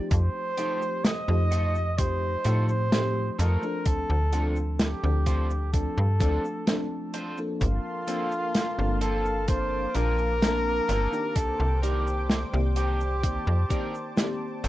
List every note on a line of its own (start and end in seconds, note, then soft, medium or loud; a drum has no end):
0.00 0.52 F3 medium
0.00 0.52 A3 medium
0.00 0.52 C4 medium
0.00 0.53 D#4 medium
0.00 0.53 G4 medium
0.11 0.30 F2 loud
0.11 1.06 C5 loud
0.11 kick loud
0.11 closed hi-hat medium
0.11 cabasa soft
0.57 1.23 F3 medium
0.57 1.23 A3 medium
0.57 0.82 A3 medium
0.57 1.23 C4 medium
0.57 0.82 D#4 medium
0.57 1.23 D#4 medium
0.57 0.82 F4 medium
0.57 0.82 G4 loud
0.57 1.23 G4 medium
0.57 closed hi-hat medium
0.57 cabasa medium
0.82 cabasa medium
1.04 2.00 D#5 loud
1.04 snare loud
1.04 closed hi-hat medium
1.04 cabasa soft
1.28 2.37 F2 medium
1.28 1.93 F3 medium
1.28 1.93 A3 medium
1.28 1.93 C4 medium
1.28 1.93 D#4 medium
1.28 1.93 G4 medium
1.51 1.75 A3 medium
1.51 1.75 D#4 medium
1.51 1.75 F4 medium
1.51 1.75 A4 medium
1.51 closed hi-hat medium
1.51 cabasa medium
1.75 cabasa medium
1.98 2.34 F3 medium
1.98 2.35 A3 medium
1.98 2.35 C4 medium
1.98 2.35 D#4 medium
1.98 2.35 G4 medium
1.98 2.68 C5 loud
1.98 kick loud
1.98 closed hi-hat medium
1.98 cabasa soft
2.44 3.31 A2 medium
2.44 2.86 F3 medium
2.44 2.87 A3 medium
2.44 2.69 A3 medium
2.44 2.87 C4 medium
2.44 2.87 D#4 medium
2.44 2.69 D#4 medium
2.44 2.69 F4 medium
2.44 2.87 G4 loud
2.44 2.69 A4 loud
2.44 closed hi-hat medium
2.44 cabasa medium
2.69 3.32 C5 loud
2.69 cabasa soft
2.91 3.57 F3 medium
2.91 3.57 A3 medium
2.91 3.57 C4 medium
2.91 3.57 D#4 medium
2.91 3.58 G4 loud
2.91 snare loud
2.91 closed hi-hat medium
2.91 cabasa soft
3.32 3.40 C5 medium
3.39 3.58 F2 medium
3.39 3.63 A3 medium
3.39 3.63 D#4 medium
3.39 3.63 F4 medium
3.39 3.63 A4 loud
3.39 3.88 A#4 loud
3.39 closed hi-hat medium
3.39 cabasa medium
3.62 4.27 F3 medium
3.62 4.27 A3 medium
3.62 4.27 C4 medium
3.62 4.28 D4 medium
3.62 4.28 A4 medium
3.62 cabasa medium
3.85 4.05 D2 soft
3.85 4.53 A4 loud
3.85 kick loud
3.85 closed hi-hat medium
3.85 cabasa medium
4.10 4.95 D2 medium
4.32 4.97 F3 medium
4.32 4.98 A3 medium
4.32 4.98 C4 medium
4.32 4.57 C4 medium
4.32 4.98 D4 medium
4.32 4.57 D4 medium
4.32 4.57 F4 medium
4.32 4.57 A4 loud
4.32 4.98 A4 medium
4.32 closed hi-hat medium
4.32 cabasa medium
4.56 cabasa medium
4.79 5.69 G4 loud
4.79 snare loud
4.79 closed hi-hat medium
4.79 cabasa soft
5.02 5.89 D2 medium
5.02 5.67 F3 medium
5.02 5.68 A3 medium
5.02 5.68 C4 medium
5.02 5.68 D4 medium
5.02 5.68 A4 medium
5.26 5.50 C4 medium
5.26 5.50 D4 medium
5.26 5.50 F4 medium
5.26 5.50 C5 loud
5.26 kick medium
5.26 closed hi-hat medium
5.26 cabasa medium
5.50 cabasa medium
5.73 6.09 F3 medium
5.73 6.09 A3 medium
5.73 6.10 C4 medium
5.73 6.10 D4 medium
5.73 7.10 A4 medium
5.73 6.10 A4 medium
5.73 kick loud
5.73 closed hi-hat medium
5.73 cabasa soft
5.98 6.22 G2 medium
6.19 6.39 D2 medium
6.19 6.61 F3 medium
6.19 6.61 A3 medium
6.19 6.62 C4 medium
6.19 6.44 C4 medium
6.19 6.62 D4 medium
6.19 6.44 D4 medium
6.19 6.44 F4 medium
6.19 6.44 A4 loud
6.19 6.62 A4 loud
6.19 kick loud
6.19 closed hi-hat medium
6.19 cabasa medium
6.45 cabasa medium
6.66 7.32 F3 medium
6.66 7.32 A3 medium
6.66 7.32 C4 medium
6.66 7.32 D4 medium
6.66 7.33 A4 loud
6.66 snare loud
6.66 closed hi-hat medium
6.66 cabasa soft
7.14 7.38 C4 medium
7.14 7.38 D4 medium
7.14 7.38 F4 medium
7.14 7.38 C5 loud
7.14 closed hi-hat medium
7.14 cabasa medium
7.37 8.02 F3 medium
7.37 8.02 A#3 medium
7.37 8.02 C4 medium
7.37 8.03 D4 medium
7.37 8.03 A4 medium
7.37 cabasa medium
7.61 7.80 G1 loud
7.61 11.32 A#3 medium
7.61 8.98 F4 loud
7.61 11.32 F5 medium
7.61 11.32 A5 medium
7.61 9.47 C6 medium
7.61 kick loud
7.61 closed hi-hat medium
7.61 cabasa soft
8.07 8.72 F3 medium
8.07 8.73 A#3 medium
8.07 8.32 A#3 medium
8.07 8.73 C4 medium
8.07 8.32 C4 medium
8.07 8.73 D4 medium
8.07 8.32 F4 medium
8.07 8.32 A4 loud
8.07 8.73 A4 medium
8.07 closed hi-hat medium
8.07 cabasa medium
8.32 cabasa soft
8.55 snare loud
8.55 closed hi-hat medium
8.55 cabasa soft
8.77 9.87 G1 medium
8.77 9.42 F3 medium
8.77 9.43 A#3 medium
8.77 9.43 C4 medium
8.77 9.43 D4 medium
8.77 9.43 A4 medium
9.01 9.25 A#3 medium
9.01 9.25 C4 medium
9.01 9.25 F4 medium
9.01 9.25 A4 loud
9.01 9.50 A4 loud
9.01 closed hi-hat medium
9.01 cabasa medium
9.25 cabasa medium
9.47 9.84 F3 medium
9.47 9.84 A#3 medium
9.47 9.85 C4 medium
9.47 9.85 D4 medium
9.47 9.85 A4 medium
9.47 9.97 C5 loud
9.47 14.68 D6 medium
9.47 kick loud
9.47 closed hi-hat medium
9.47 cabasa soft
9.94 10.81 A#1 medium
9.94 10.36 F3 medium
9.94 10.36 A#3 medium
9.94 10.19 A#3 medium
9.94 10.36 C4 medium
9.94 10.19 C4 medium
9.94 10.37 D4 medium
9.94 10.19 F4 medium
9.94 10.19 A#4 loud
9.94 11.37 A#4 loud
9.94 10.37 A5 loud
9.94 closed hi-hat medium
9.94 cabasa medium
10.19 cabasa medium
10.41 11.07 F3 medium
10.41 11.07 A#3 medium
10.41 11.07 C4 medium
10.41 11.07 D4 medium
10.41 11.08 A5 loud
10.41 snare loud
10.41 closed hi-hat medium
10.41 cabasa soft
10.88 11.08 G1 medium
10.88 11.13 A#3 medium
10.88 11.13 C4 medium
10.88 11.13 F4 medium
10.88 11.13 A4 loud
10.88 closed hi-hat medium
10.88 cabasa medium
11.12 11.77 D#3 medium
11.12 11.77 A#3 medium
11.12 11.77 C4 medium
11.12 11.77 D4 medium
11.12 11.78 G4 medium
11.12 cabasa medium
11.36 11.55 C2 soft
11.36 11.82 A4 loud
11.36 14.68 C5 medium
11.36 13.22 G5 medium
11.36 kick loud
11.36 closed hi-hat medium
11.36 cabasa soft
11.60 12.45 C2 medium
11.82 12.47 D#3 medium
11.82 12.47 A#3 medium
11.82 12.48 C4 medium
11.82 12.07 C4 medium
11.82 12.07 D4 medium
11.82 12.07 D#4 medium
11.82 12.46 G4 loud
11.82 12.48 G4 medium
11.82 12.07 A#4 loud
11.82 12.48 D5 medium
11.82 closed hi-hat medium
11.82 cabasa medium
12.07 cabasa medium
12.30 snare loud
12.30 closed hi-hat medium
12.30 cabasa medium
12.52 13.39 C2 medium
12.52 13.17 D#3 medium
12.52 13.17 A#3 medium
12.52 13.18 C4 medium
12.52 13.18 G4 medium
12.52 13.18 D5 medium
12.76 13.00 C4 medium
12.76 13.01 D4 medium
12.76 13.00 D#4 medium
12.76 13.00 G4 medium
12.76 14.60 G4 loud
12.76 closed hi-hat medium
12.76 cabasa medium
13.01 cabasa medium
13.22 13.59 D#3 medium
13.22 13.59 A#3 medium
13.22 13.59 C4 medium
13.22 13.60 G4 medium
13.22 13.60 D5 medium
13.22 14.68 A5 medium
13.22 kick loud
13.22 closed hi-hat medium
13.22 cabasa soft
13.47 13.65 F2 medium
13.69 14.11 D#3 medium
13.69 14.11 A#3 medium
13.69 14.12 C4 medium
13.69 13.94 C4 medium
13.69 13.94 D4 medium
13.69 13.94 D#4 medium
13.69 14.12 G4 loud
13.69 13.94 A#4 loud
13.69 14.12 D5 medium
13.69 kick loud
13.69 closed hi-hat medium
13.69 cabasa medium
13.95 cabasa medium
14.16 14.68 D#3 loud
14.16 14.68 A#3 medium
14.16 14.68 C4 medium
14.16 14.68 G4 loud
14.16 14.68 D5 medium
14.16 snare loud
14.16 closed hi-hat loud
14.16 cabasa medium
14.64 14.68 G1 medium
14.64 14.68 C4 medium
14.64 14.68 D4 medium
14.64 14.68 D#4 medium
14.64 14.68 A4 loud
14.64 closed hi-hat medium
14.64 cabasa medium